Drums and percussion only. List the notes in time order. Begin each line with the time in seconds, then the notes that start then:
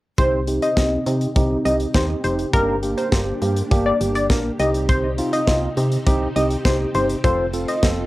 0.18 kick, closed hi-hat
0.47 closed hi-hat
0.62 closed hi-hat
0.77 kick, snare, closed hi-hat
1.06 closed hi-hat
1.21 closed hi-hat
1.36 kick, closed hi-hat
1.65 closed hi-hat
1.80 closed hi-hat
1.94 kick, snare, closed hi-hat
2.24 closed hi-hat
2.39 closed hi-hat
2.54 kick, closed hi-hat
2.83 closed hi-hat
2.98 closed hi-hat
3.12 kick, snare, closed hi-hat
3.42 closed hi-hat
3.56 closed hi-hat
3.71 kick, closed hi-hat
4.01 closed hi-hat
4.15 closed hi-hat
4.30 kick, snare, closed hi-hat
4.59 closed hi-hat
4.74 closed hi-hat
4.89 kick, closed hi-hat
5.18 closed hi-hat
5.33 closed hi-hat
5.47 kick, snare, closed hi-hat
5.77 closed hi-hat
5.92 closed hi-hat
6.07 kick, closed hi-hat
6.36 closed hi-hat
6.51 closed hi-hat
6.65 kick, snare, closed hi-hat
6.95 closed hi-hat
7.10 closed hi-hat
7.24 kick, closed hi-hat
7.53 closed hi-hat
7.68 closed hi-hat
7.83 kick, snare, closed hi-hat